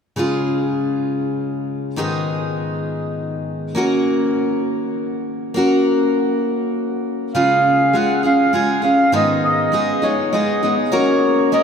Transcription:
0.16 1.96 C#3 medium
0.16 1.96 G#3 medium
0.16 1.97 C#4 medium
0.16 1.97 F4 medium
0.16 1.98 G#4 medium
1.96 3.76 G#2 medium
1.96 3.76 D#3 medium
1.96 3.74 G#3 medium
1.96 3.75 B3 medium
1.96 3.77 D#4 medium
1.96 3.78 G#4 medium
3.75 5.53 A#3 medium
3.75 5.56 C#4 medium
3.75 5.56 F#4 medium
3.75 5.56 A#4 medium
5.54 7.34 A#3 medium
5.54 7.34 C#4 medium
5.54 7.35 F#4 medium
5.54 7.36 A#4 medium
7.34 7.94 C#3 medium
7.34 7.93 G#3 medium
7.34 7.93 C#4 medium
7.34 7.94 F4 medium
7.34 7.96 G#4 medium
7.34 7.96 F5 medium
7.93 8.24 G#3 soft
7.93 8.24 C#4 soft
7.93 8.23 F4 soft
7.93 8.22 G#4 soft
7.93 8.22 F#5 medium
8.23 8.53 C#4 soft
8.23 8.53 F4 soft
8.23 8.53 G#4 soft
8.23 8.53 F5 medium
8.53 8.83 G#3 soft
8.53 8.83 C#4 soft
8.53 8.82 F4 soft
8.53 8.81 G#4 soft
8.53 8.82 G#5 medium
8.82 9.13 C#4 soft
8.82 9.13 F4 soft
8.82 9.12 G#4 soft
8.82 9.12 F5 medium
9.12 9.73 G#2 medium
9.12 9.73 D#3 medium
9.12 9.71 G#3 medium
9.12 9.72 B3 medium
9.12 9.72 D#4 medium
9.12 9.73 G#4 medium
9.12 9.42 D#5 medium
9.44 10.05 D#5 medium
9.72 10.02 G#3 soft
9.72 10.02 B3 soft
9.72 10.02 D#4 soft
9.72 10.01 G#4 medium
10.02 10.31 G#3 soft
10.02 10.32 B3 soft
10.02 10.33 D#4 soft
10.02 10.32 G#4 soft
10.02 10.34 C#5 medium
10.32 10.63 G#3 soft
10.32 10.63 B3 soft
10.32 10.62 D#4 soft
10.32 10.61 G#4 soft
10.32 10.74 D#5 medium
10.63 10.91 G#3 soft
10.63 10.92 B3 soft
10.63 10.92 D#4 soft
10.63 10.93 G#4 soft
10.92 11.51 A#3 medium
10.92 11.52 C#4 medium
10.92 11.52 F#4 medium
10.92 11.53 A#4 medium
10.92 11.54 C#5 medium
11.52 11.63 A#3 soft
11.52 11.63 C#4 soft
11.52 11.63 F#4 soft
11.52 11.63 A#4 soft
11.52 11.63 D#5 medium

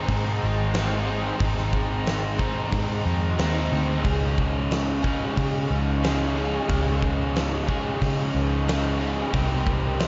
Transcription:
0.00 0.73 G#2 medium
0.00 0.73 D#3 medium
0.00 0.75 G#3 medium
0.00 0.73 C4 medium
0.00 0.10 D#4 medium
0.00 4.01 G#4 medium
0.00 10.08 D#5 medium
0.00 4.01 G5 medium
0.00 4.01 C6 medium
0.07 1.07 G#2 medium
0.07 0.38 G#2 medium
0.07 0.72 D#3 medium
0.07 0.74 G#3 loud
0.07 0.74 C4 loud
0.07 0.76 D#4 loud
0.07 kick medium
0.07 open hi-hat medium
0.43 1.30 G#1 medium
0.73 1.38 G#2 medium
0.73 1.38 D#3 medium
0.73 1.10 G#3 medium
0.73 1.07 C4 medium
0.73 1.06 D#4 medium
0.73 snare loud
0.73 open hi-hat medium
1.07 1.40 G#3 medium
1.07 1.40 C4 medium
1.07 1.41 D#4 medium
1.39 2.58 G#1 loud
1.39 2.69 G#2 loud
1.39 2.71 D#3 loud
1.39 2.41 G#3 medium
1.39 2.38 C4 medium
1.39 2.37 D#4 medium
1.39 kick loud
1.39 open hi-hat medium
1.58 snare soft
1.73 kick medium
2.06 snare medium
2.06 open hi-hat medium
2.38 3.36 G#2 medium
2.38 3.37 D#3 medium
2.38 2.72 G#3 medium
2.38 2.72 C4 medium
2.38 2.73 D#4 medium
2.38 kick medium
2.70 3.71 G#2 loud
2.70 3.02 G#2 medium
2.70 3.36 D#3 medium
2.70 3.38 G#3 medium
2.70 3.38 C4 medium
2.70 3.40 D#4 loud
2.70 kick medium
2.70 open hi-hat medium
3.06 3.35 F2 medium
3.37 3.69 D#2 medium
3.37 4.02 G#2 medium
3.37 4.02 D#3 medium
3.37 3.73 G#3 medium
3.37 3.71 C4 medium
3.37 3.71 D#4 medium
3.37 snare loud
3.37 open hi-hat medium
3.71 4.02 D2 medium
3.71 4.04 G#3 medium
3.71 4.03 C4 medium
3.71 4.05 D#4 medium
4.02 5.22 C#2 medium
4.02 5.34 C#3 medium
4.02 5.35 G#3 loud
4.02 5.05 C#4 loud
4.02 5.03 D#4 medium
4.02 9.28 G#4 medium
4.02 5.02 G#4 medium
4.02 9.28 F5 medium
4.02 9.29 C#6 medium
4.02 kick medium
4.02 open hi-hat soft
4.38 kick medium
4.71 snare medium
4.71 open hi-hat medium
5.02 6.01 C#3 medium
5.02 6.02 G#3 medium
5.02 5.35 C#4 medium
5.02 5.37 D#4 medium
5.02 5.37 G#4 medium
5.02 kick medium
5.34 6.35 C#3 medium
5.34 5.67 C#3 medium
5.34 6.01 G#3 medium
5.34 6.03 C#4 loud
5.34 6.05 D#4 loud
5.34 6.05 G#4 medium
5.34 kick medium
5.34 open hi-hat medium
5.71 6.58 C#2 medium
6.02 6.66 C#3 medium
6.02 6.68 G#3 medium
6.02 6.37 C#4 medium
6.02 6.37 D#4 medium
6.02 snare loud
6.02 open hi-hat soft
6.06 6.34 G#4 medium
6.35 6.69 C#4 medium
6.35 6.71 D#4 medium
6.35 6.70 G#4 medium
6.68 7.86 C#2 loud
6.68 8.00 C#3 medium
6.68 8.00 G#3 medium
6.68 7.70 C#4 medium
6.68 7.69 D#4 medium
6.68 7.67 G#4 medium
6.68 kick loud
6.68 open hi-hat medium
7.02 kick medium
7.36 snare loud
7.36 open hi-hat soft
7.68 8.66 C#3 medium
7.68 8.66 G#3 medium
7.68 8.01 C#4 medium
7.68 8.03 D#4 medium
7.68 8.03 G#4 medium
7.68 kick medium
8.01 9.00 C#3 medium
8.01 8.31 C#3 medium
8.01 8.66 G#3 medium
8.01 8.67 C#4 medium
8.01 8.69 D#4 loud
8.01 8.69 G#4 loud
8.01 kick medium
8.01 open hi-hat medium
8.35 9.22 C#2 medium
8.67 9.31 C#3 medium
8.67 9.31 G#3 medium
8.67 9.01 C#4 medium
8.67 9.00 D#4 medium
8.67 8.98 G#4 medium
8.67 snare loud
8.67 open hi-hat medium
8.99 9.32 C#4 medium
8.99 9.35 D#4 medium
8.99 9.31 G#4 medium
9.31 10.08 C2 loud
9.31 10.08 C3 medium
9.31 10.08 G3 medium
9.31 10.08 C4 loud
9.31 10.08 A#4 medium
9.31 10.08 G5 medium
9.31 10.08 C6 medium
9.31 kick loud
9.31 open hi-hat medium
9.35 10.08 D#4 medium
9.35 10.08 G4 medium
9.67 kick medium
10.00 snare loud
10.00 open hi-hat soft

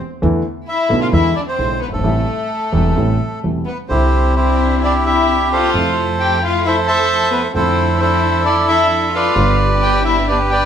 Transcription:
0.22 0.41 E2 medium
0.22 0.42 E2 medium
0.22 0.41 D3 medium
0.22 0.41 E3 medium
0.22 0.41 A3 medium
0.22 0.41 B3 medium
0.22 0.41 E4 medium
0.68 1.00 E4 medium
0.68 1.00 E5 medium
0.89 1.09 B1 medium
0.89 1.10 B1 medium
0.89 1.09 B2 medium
0.89 1.09 D3 medium
0.89 1.09 A3 soft
0.89 1.09 B3 soft
0.89 1.09 E4 medium
1.01 1.07 F4 medium
1.01 1.07 F5 medium
1.13 1.32 E2 medium
1.13 1.32 D3 medium
1.13 1.32 E3 medium
1.13 1.32 G#3 soft
1.13 1.32 B3 soft
1.13 1.34 E4 medium
1.13 1.32 E4 medium
1.13 1.35 E5 medium
1.36 1.41 D4 medium
1.36 1.41 D5 medium
1.46 1.79 C4 medium
1.46 1.80 C5 medium
1.58 1.78 B1 soft
1.58 1.78 B1 medium
1.58 1.78 B2 soft
1.58 1.78 D3 soft
1.58 1.78 G#3 soft
1.58 1.78 B3 soft
1.58 1.78 E4 soft
1.81 1.86 B3 medium
1.81 1.87 B4 medium
1.87 1.93 F#1 soft
1.92 1.99 G1 soft
1.92 1.98 G1 soft
1.92 3.39 A3 medium
1.92 3.39 A4 medium
1.98 2.04 G#1 medium
2.04 2.23 A1 medium
2.04 2.24 A1 medium
2.04 2.24 A2 medium
2.04 2.23 C3 medium
2.04 2.24 G3 medium
2.04 2.24 A3 medium
2.04 2.24 E4 medium
2.72 2.92 E1 medium
2.72 2.93 E1 medium
2.72 2.92 E2 medium
2.72 2.92 C3 medium
2.72 2.92 G3 soft
2.72 2.92 A3 soft
2.72 2.92 E4 medium
2.96 3.16 A1 medium
2.96 3.16 A2 medium
2.96 3.16 C3 soft
2.96 3.16 G3 soft
2.96 3.16 A3 soft
2.96 3.16 E4 medium
3.43 3.63 E1 soft
3.43 3.64 E1 soft
3.43 3.63 E2 soft
3.43 3.63 C3 soft
3.43 3.63 G3 soft
3.43 3.63 A3 soft
3.43 3.64 E4 soft
3.66 3.76 B3 soft
3.66 3.78 B4 medium
3.89 5.65 C2 medium
3.89 5.65 C3 medium
3.89 5.64 D3 soft
3.89 5.65 G3 soft
3.89 4.33 C4 medium
3.89 5.65 C4 medium
3.89 5.66 C4 soft
3.89 5.65 D4 soft
3.89 4.35 E4 soft
3.89 5.65 E4 medium
3.89 4.35 G4 soft
3.89 4.34 C5 medium
3.93 5.66 E4 medium
4.36 4.80 C4 medium
4.36 5.24 E4 medium
4.36 4.82 G4 medium
4.36 4.79 C5 medium
4.83 4.93 D4 medium
4.83 5.05 G4 medium
4.83 4.94 D5 medium
5.06 5.49 E4 medium
5.06 5.70 G4 medium
5.06 5.48 E5 medium
5.53 5.95 F4 medium
5.53 6.39 A4 medium
5.53 6.39 C5 medium
5.53 5.95 F5 medium
5.73 7.46 F2 medium
5.73 7.46 C3 soft
5.73 7.46 F3 medium
5.73 7.46 A3 medium
5.73 7.47 A3 soft
5.73 7.46 E4 medium
5.73 7.47 E4 medium
6.20 6.41 G4 medium
6.20 6.43 G5 medium
6.43 6.64 F4 medium
6.43 6.66 F5 medium
6.65 6.75 E4 medium
6.65 7.52 A4 medium
6.65 6.87 C5 medium
6.65 6.76 E5 medium
6.86 7.29 A4 medium
6.86 7.51 C5 medium
6.86 7.51 E5 medium
6.86 7.29 A5 loud
7.31 7.41 B3 medium
7.31 7.42 B4 medium
7.54 9.27 F2 medium
7.54 9.28 F2 medium
7.54 9.26 D3 soft
7.54 9.27 F3 medium
7.54 9.28 A3 medium
7.54 7.96 C4 medium
7.54 9.27 D4 medium
7.54 9.27 E4 medium
7.54 8.01 E4 medium
7.54 9.28 E4 medium
7.54 8.01 A4 medium
7.54 7.97 C5 medium
7.98 8.41 C4 medium
7.98 8.88 E4 medium
7.98 8.42 C5 medium
8.02 8.45 A4 medium
8.43 8.65 D4 medium
8.43 8.68 A4 medium
8.43 8.66 D5 medium
8.67 9.10 E4 medium
8.67 9.33 A4 medium
8.67 9.15 E5 medium
9.13 9.56 F4 medium
9.13 10.02 B4 medium
9.13 10.02 D5 medium
9.13 9.57 F5 medium
9.35 10.65 G1 medium
9.35 10.65 G2 medium
9.35 10.65 D3 soft
9.35 10.65 G3 soft
9.35 10.65 B3 medium
9.35 10.65 B3 soft
9.35 10.65 D4 medium
9.35 10.65 G4 medium
9.81 10.03 G4 medium
9.81 10.04 G5 medium
10.04 10.26 E4 medium
10.04 10.26 E5 medium
10.28 10.39 D4 medium
10.28 10.65 G4 medium
10.28 10.51 B4 medium
10.28 10.38 D5 medium
10.50 10.65 G4 medium
10.50 10.65 B4 medium
10.50 10.65 D5 medium
10.50 10.65 G5 medium

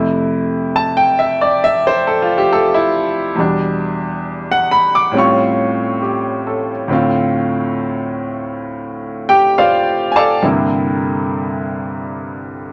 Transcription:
0.00 3.37 F2 medium
0.00 3.37 C3 medium
0.00 3.38 A3 soft
0.00 2.73 E4 medium
0.76 1.03 A5 loud
0.97 1.28 G5 medium
1.19 1.39 E5 medium
1.41 1.58 D5 medium
1.64 1.91 E5 loud
1.87 2.17 C5 medium
2.07 2.13 A4 medium
2.22 2.40 F4 medium
2.38 2.48 G4 medium
2.53 2.80 A4 medium
2.74 2.93 E4 medium
3.35 5.13 E2 medium
3.35 5.13 B2 soft
3.35 5.11 G3 soft
3.40 5.15 D4 medium
4.51 4.82 F#5 loud
4.71 4.92 B5 loud
4.95 5.11 D6 loud
5.11 6.88 A2 medium
5.11 6.89 G3 soft
5.11 6.90 C4 medium
5.15 6.91 C#4 medium
5.15 6.91 F4 medium
5.15 6.00 C#6 medium
6.02 6.72 G4 soft
6.47 7.08 A4 soft
6.88 10.41 D2 medium
6.88 10.42 A2 medium
6.88 10.42 C4 medium
6.93 9.57 F4 medium
9.29 9.56 G4 medium
9.29 9.55 G5 loud
9.58 10.14 F4 medium
9.58 10.14 C5 medium
9.58 10.14 D5 medium
9.58 10.13 F5 medium
10.12 10.15 G#5 medium
10.16 10.43 A4 medium
10.16 10.43 D5 medium
10.16 10.43 F5 medium
10.16 10.43 A5 medium
10.42 12.73 C2 soft
10.42 12.73 G2 soft
10.42 12.73 D3 soft
10.42 12.73 A#3 soft
10.42 12.73 C4 soft
10.42 12.73 E4 medium

